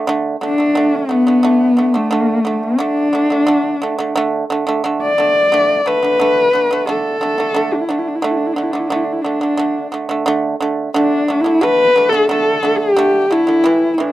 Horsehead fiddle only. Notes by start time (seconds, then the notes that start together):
0.45 D4
0.95 B3
1.96 A3
2.63 D4
5.03 D5
5.87 B4
6.90 A4
7.74 D4
7.81 E4
7.89 D4
7.99 E4
8.08 D4
8.15 E4
8.22 D4
8.31 E4
8.37 D4
8.47 E4
8.54 D4
8.63 E4
8.72 D4
8.80 E4
8.88 D4
8.96 E4
9.04 D4
9.13 E4
9.22 D4
10.96 D4
11.41 E4
11.63 B4
12.09 A4
12.31 A4
12.77 G4
13.32 E4
13.93 E4
14.01 D4